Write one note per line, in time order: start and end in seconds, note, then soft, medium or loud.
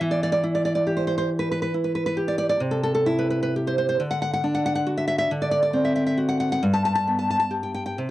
0.01 2.55 E3 medium
0.11 0.22 D5 medium
0.23 0.31 D5 medium
0.32 0.44 D5 medium
0.44 1.73 E4 soft
0.55 0.64 D5 medium
0.65 0.74 D5 medium
0.75 0.86 D5 medium
0.87 2.16 G4 soft
0.97 1.06 C5 medium
1.07 1.17 C5 medium
1.18 1.29 C5 medium
1.39 1.50 B4 medium
1.51 1.61 B4 medium
1.62 1.73 B4 medium
1.74 2.61 E4 soft
1.84 1.94 B4 soft
1.95 2.05 B4 medium
2.06 2.17 B4 medium
2.17 2.60 G4 soft
2.28 2.37 D5 medium
2.38 2.48 D5 medium
2.49 2.60 D5 medium
2.60 3.96 C3 medium
2.71 2.82 A4 medium
2.83 2.93 A4 medium
2.95 3.06 A4 medium
3.06 4.00 E4 medium
3.19 3.29 B4 medium
3.30 3.41 B4 medium
3.43 3.54 B4 medium
3.56 4.01 G4 soft
3.67 3.77 C5 medium
3.78 3.88 C5 medium
3.89 4.00 C5 medium
4.00 5.27 D3 medium
4.11 4.21 F#5 medium
4.22 4.32 F#5 medium
4.33 4.44 F#5 medium
4.44 5.31 D4 soft
4.55 4.65 F#5 medium
4.66 4.74 F#5 medium
4.75 4.87 F#5 medium
4.87 5.30 F#4 soft
4.97 5.06 E5 medium
5.08 5.17 E5 medium
5.18 5.30 E5 medium
5.31 6.58 D3 medium
5.42 5.50 D5 medium
5.51 5.61 D5 medium
5.63 5.74 D5 medium
5.73 6.62 C4 medium
5.85 5.94 E5 medium
5.96 6.05 E5 medium
6.07 6.18 E5 medium
6.17 6.62 F#4 medium
6.29 6.39 F#5 medium
6.40 6.51 F#5 medium
6.52 6.63 F#5 medium
6.63 7.94 G2 medium
6.74 6.84 A5 medium
6.85 6.94 A5 medium
6.95 7.07 A5 medium
7.07 7.98 B3 soft
7.19 7.29 A5 medium
7.30 7.38 A5 medium
7.40 7.51 A5 medium
7.51 7.97 G4 soft
7.63 7.73 G5 medium
7.74 7.85 G5 medium
7.86 7.98 G5 medium
7.98 8.10 C3 medium